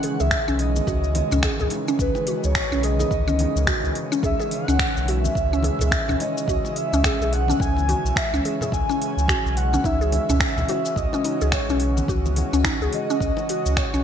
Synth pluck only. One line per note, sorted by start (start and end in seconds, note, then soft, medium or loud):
0.04 0.13 G#4 medium
0.20 0.46 G#4 medium
0.48 0.54 C#4 loud
0.88 1.03 F#4 medium
1.32 1.39 C#4 loud
1.44 1.53 G#4 medium
1.61 1.87 G#4 medium
1.88 1.95 C#4 loud
2.28 2.43 F#4 medium
2.72 2.79 C#4 loud
2.83 2.93 G#4 medium
3.00 3.26 G#4 medium
3.28 3.34 C#4 loud
3.68 3.83 F#4 medium
4.12 4.19 C#4 loud
4.24 4.33 G#4 medium
4.40 4.67 G#4 medium
4.68 4.75 C#4 loud
5.09 5.24 F#4 medium
5.53 5.59 C#4 loud
5.64 5.73 G#4 medium
5.81 6.07 G#4 medium
6.09 6.15 C#4 loud
6.49 6.64 F#4 medium
6.94 7.00 C#4 loud
7.06 7.14 G#4 medium
7.22 7.48 G#4 medium
7.50 7.56 C#4 loud
7.89 8.04 F#4 medium
8.34 8.40 C#4 loud
8.45 8.54 G#4 medium
8.62 8.88 G#4 medium
8.89 8.96 C#4 medium
9.29 9.45 F#4 medium
9.74 9.80 C#4 loud
9.85 10.01 D#4 medium
10.01 10.27 G#4 medium
10.30 10.36 C#4 medium
10.69 10.85 F#4 medium
11.14 11.20 C#4 loud
11.25 11.40 D#4 medium
11.42 11.68 G#4 medium
11.70 11.76 C#4 loud
12.09 12.25 F#4 medium
12.53 12.60 C#4 loud
12.65 12.81 D#4 medium
12.82 13.08 G#4 medium
13.10 13.16 C#4 loud
13.50 13.65 F#4 medium
13.94 14.00 C#4 loud